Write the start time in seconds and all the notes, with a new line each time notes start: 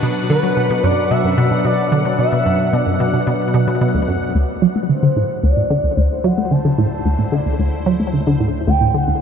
Already playing: B2 F#3 D4 B4 F#5
0.03 B2
0.30 D3 B4
0.43 F#3
0.57 B2
0.70 B2
0.83 F#2 D5
1.11 B2 E5
1.24 F#2
1.38 B2
1.51 B2
1.65 B2 D5
1.92 D3
2.05 F#3
2.19 B2 E5
2.32 B2
2.46 F#2
2.73 B2 D5
2.87 F#2
3.00 B2
3.14 B2
3.27 B2
3.54 B2
3.68 B2
3.81 B2
3.95 D2
4.08 F#2
4.35 D2 D3
4.58 A3
4.62 F#3 E4
4.76 A3
4.88 D3 C5
5.03 D3
5.17 A2
5.43 D2 D5
5.57 A2
5.70 D3
5.84 D2
5.97 D2 C5
6.24 F#3 F#5
6.38 A3
6.51 D3 A5
6.65 D3
6.78 A2
7.05 D2
7.19 A2
7.32 D3 D5
7.46 D2
7.59 D2 C5
7.86 F#3
8.00 A3
8.13 D3
8.27 D3
8.40 A2
8.67 D2 G5
8.81 A2
8.94 D3 F#5
9.08 D2